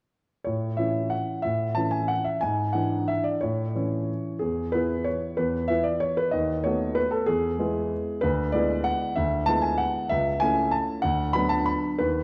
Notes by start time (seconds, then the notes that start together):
0.44 A2 C#5
0.77 E3 C#4 E4 E5
1.10 F#5
1.42 A2 E5
1.75 E3 C#4 E4 A5
1.91 G#5
2.08 F#5
2.24 E5
2.41 G#2 G#5
2.73 E3 D4 E4 F#5
3.08 E5
3.24 D5
3.41 A2 C#5
3.75 E3 C#4 E4
4.39 E2 G#4
4.72 E3 B3 E4 B4
5.04 C#5
5.37 E2 B4
5.68 E3 B3 E4 E5
5.84 D5
6.00 C#5
6.17 B4
6.31 D#2 D#5
6.64 A3 B3 F#4 C#5
6.95 B4
7.11 A4
7.26 E2 G#4
7.59 G#3 B3 E4
8.21 D2 B4
8.52 G#3 B3 E4 D5
8.84 F#5
9.16 D2 E5
9.46 G#3 B3 E4 A5
9.62 G#5
9.78 F#5
10.09 C#2 E5
10.40 A3 C#4 E4 G#5
10.71 A5
11.02 D2 F#5
11.33 F#3 B3 D4 B5
11.49 A5
11.66 B5
11.99 D#2 B4